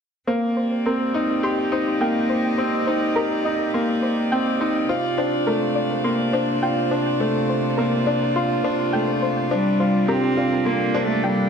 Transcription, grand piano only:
0.27 A#3
0.86 C4
1.14 D#4
1.43 G4
1.72 D#4
2.01 A#3
2.58 C4
2.87 D#4
3.16 G4
3.45 D#4
3.74 A#3
4.32 C4
4.61 D#4
4.89 F4
5.18 D4
5.47 A3
6.04 A#3
6.33 D4
6.62 F4
6.91 D4
7.20 A3
7.79 A#3
8.07 D4
8.36 F4
8.64 D4
8.94 A3
9.51 D4
9.80 F4
10.08 G4
10.37 F4
10.66 A#3
10.94 D4
11.24 D4

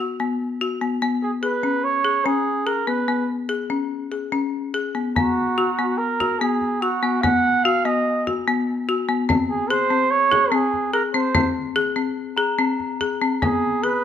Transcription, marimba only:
0.00 F#4
0.20 B3
0.61 F#4
0.81 B3
1.02 B3
1.43 G#4
1.63 C#4
2.05 G#4
2.25 C#4
2.67 G#4
2.87 B3
3.08 B3
3.49 G#4
3.70 C#4
4.12 G#4
4.32 C#4
4.74 G#4
4.95 B3
5.16 B3
5.58 F#4
5.79 B3
6.20 F#4
6.41 B3
6.82 F#4
7.03 B3
7.23 B3
7.65 F#4
7.85 B3
8.27 F#4
8.48 B3
8.89 F#4
9.09 B3
9.29 C4
9.70 G#4
9.90 C4
10.31 G#4
10.52 C4
10.93 G#4
11.14 C4
11.35 C4
11.76 G#4
11.96 C4
12.38 G#4
12.59 C4
13.01 G#4
13.21 C4
13.42 B3
13.84 G#4

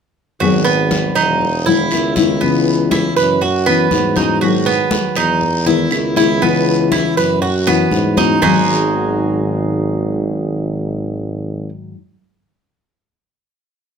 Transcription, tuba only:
0.40 G#1
1.16 E1
1.91 C#2
3.16 F#2
3.91 G#2
5.16 E2
5.91 C#2
7.17 F#2
7.91 G#2
8.42 G#1

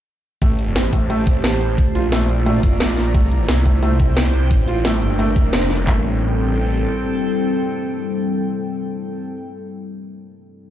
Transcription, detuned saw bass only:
0.42 A1
0.76 A1
1.61 A1
1.95 A#1
2.80 A#1
3.14 C2
3.48 C2
4.34 C2
4.51 A1
5.02 G1
5.36 F1
5.87 A1

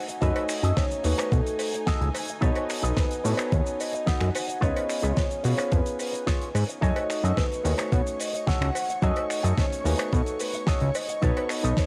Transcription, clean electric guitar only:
0.08 muted clean electric guitar stroke
0.21 F#4 G#4 A4 B4
0.63 F#4 G#4 A4 D#5
1.04 muted clean electric guitar stroke
1.18 muted clean electric guitar stroke
1.32 muted clean electric guitar stroke
1.73 muted clean electric guitar stroke
1.86 F#4 G#4 A4 D#5
2.28 muted clean electric guitar stroke
2.41 D#4 A4 B4 C#5
2.82 D#4 A4 B4 D#5
3.24 muted clean electric guitar stroke
3.37 muted clean electric guitar stroke
3.51 muted clean electric guitar stroke
3.92 muted clean electric guitar stroke
4.06 D#4 A4 B4 D#5
4.48 muted clean electric guitar stroke
4.61 F4 G#4 B4 C#5
5.02 F4 G#4 B4 C#5
5.43 muted clean electric guitar stroke
5.57 muted clean electric guitar stroke
5.71 muted clean electric guitar stroke
6.12 muted clean electric guitar stroke
6.26 F4 G#4 B4 C#5
6.68 muted clean electric guitar stroke
6.81 F#4 G#4 A4 D#5
7.23 F#4 G#4 A4 D#5
7.64 muted clean electric guitar stroke
7.78 muted clean electric guitar stroke
7.92 muted clean electric guitar stroke
8.33 muted clean electric guitar stroke
8.47 F#4 G#4 A4 C#5
8.89 muted clean electric guitar stroke
9.02 F#4 G#4 A4 D#5
9.43 F#4 G#4 A4 D#5
9.84 muted clean electric guitar stroke
9.98 muted clean electric guitar stroke
10.11 muted clean electric guitar stroke
10.53 muted clean electric guitar stroke
10.67 F#4 G#4 A4 D#5
11.08 muted clean electric guitar stroke
11.22 D#4 A4 B4 C#5
11.63 D#4 A4 B4 D#5

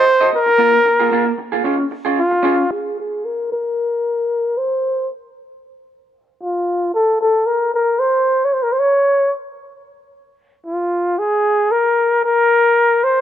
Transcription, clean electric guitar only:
0.07 muted clean electric guitar stroke
0.21 F#4 A4 D#5
0.32 muted clean electric guitar stroke
0.46 muted clean electric guitar stroke
0.58 A#3 F4 A#4
0.73 muted clean electric guitar stroke
0.85 muted clean electric guitar stroke
1.00 A#3 F4 G#4
1.11 A#3 F4 G#4
1.26 muted clean electric guitar stroke
1.38 muted clean electric guitar stroke
1.52 A#3 F4 G#4
1.64 C#4 F4 G#4
1.78 muted clean electric guitar stroke
1.91 muted clean electric guitar stroke
2.05 C#4 F4 G#4
2.31 muted clean electric guitar stroke
2.43 C#4 F4 G#4
2.58 muted clean electric guitar stroke

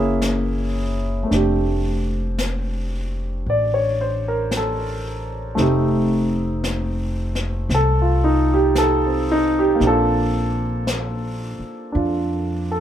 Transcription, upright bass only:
Already playing: F#1
1.31 F1
3.46 A1
5.57 F1
7.69 C2
9.80 A#1
11.59 muted upright bass stroke
11.95 F2

